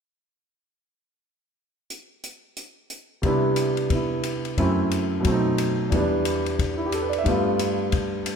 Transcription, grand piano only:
3.22 C3 G3 B3
3.26 D4 E4
3.91 B3 E4
4.58 F#2 F#3 A3 C4 E4
5.20 B2 F#3
5.25 A3 C4
5.31 D#4
5.90 E2 E3 G3 B3
5.95 D4
6.77 E4
6.86 G4
6.94 A4
7.02 B4
7.10 D5
7.18 E5
7.24 G2 G3 A3
7.28 B3 F4

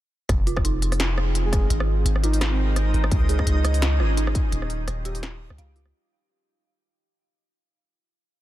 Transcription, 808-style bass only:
0.29 F1
1.70 G#1
2.05 G#1
2.94 G#1
3.12 C#2
3.47 C#2
4.00 G#1
4.52 D#1
4.88 D#1
5.50 C#2
5.58 C#2

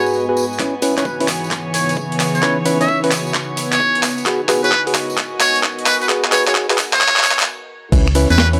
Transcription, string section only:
Already playing: B3 F#4 D#5 G#5
0.82 E3
1.05 C#5
4.42 F#4
4.57 D#5
8.02 E3
8.09 C#5

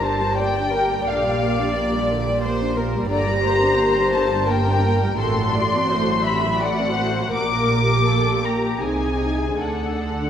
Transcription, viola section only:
Already playing: G4
0.03 D3
0.21 G3
0.39 A#3
0.57 D4
0.74 A#3
0.91 G3
1.10 D3
1.26 G3
1.44 A#3
1.60 D4
1.78 A#3
1.95 G3
2.12 D3
2.29 G3
2.46 A#3
2.62 D4
2.79 A#3
2.95 G3
3.11 D3 G4
3.28 G3
3.45 A#3
3.63 D4
3.79 A#3
3.96 G3
4.14 D3
4.30 G3
4.48 A#3
4.66 D4
4.83 A#3
5.02 G3
5.20 C3 F#4
5.38 F#3
5.56 A3
5.75 C4
5.92 A3
6.11 F#3
6.29 C3
6.44 F#3
6.60 A3
6.78 C4
6.98 A3
7.17 F#3
7.36 A#3 G4
8.83 D#4 G#4
9.61 D4 A4

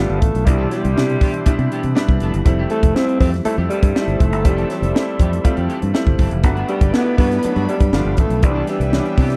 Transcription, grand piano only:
Already playing: A3 B3 D4 F4
0.46 B2 G3 D4 E4
0.96 B2 G3 D4 E4
1.46 B2 G3 D4 E4
1.95 G3 B3 D4 E4
2.45 G3 A3 C4 E4
2.96 G3 A3 C4 E4
3.45 G3 A3 C4 E4
3.95 G3 A3 C4 D#4
4.02 E4
4.44 G3 A3 C4 E4
4.95 G3 A3 C4 E4
5.44 G3 A3 C4 F4
5.94 G3 A3 C4 E4
6.44 A3 B3 D4 F#4
6.94 A3 B3 D#4 F#4
7.01 E4
7.44 F#3 A3 B3 D4
7.94 F3 A3 B3 D4
8.44 E3 G3 B3 C4
8.51 D4
8.92 E3 G3 B3 C#4
9.00 D4

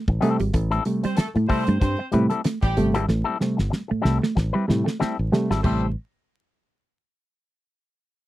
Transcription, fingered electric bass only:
0.08 A1
0.40 G#1
0.55 A1
1.04 muted fingered electric bass stroke
1.18 muted fingered electric bass stroke
1.36 A2
1.68 G2
1.81 G2
2.14 A2
2.63 A1
2.77 G1
2.95 G#1
3.08 A1
3.59 G1
3.91 muted fingered electric bass stroke
4.05 C2
4.37 A1
4.70 A2
5.01 muted fingered electric bass stroke
5.19 A1
5.50 G#1
5.65 A1

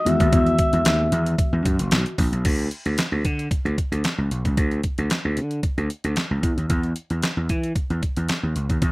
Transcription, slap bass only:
0.06 E2
0.20 D#2
0.33 E2
0.73 E2
0.86 D#2
1.12 E2
1.53 E2
1.66 F#2
1.79 F#1
1.91 B1
2.18 A#1
2.32 B1
2.45 D2
2.86 D2
3.12 D2
3.25 D3
3.65 D2
3.92 D2
4.18 C#2
4.31 B1
4.45 C#2
4.57 D2
4.98 D2
5.25 D2
5.37 D3
5.78 D2
6.04 D2
6.31 C#2
6.43 E2
6.57 D#2
6.70 E2
7.10 E2
7.37 E2
7.50 E3
7.90 E2
8.17 E2
8.43 D#2
8.56 C#2
8.70 D#2
8.82 E2

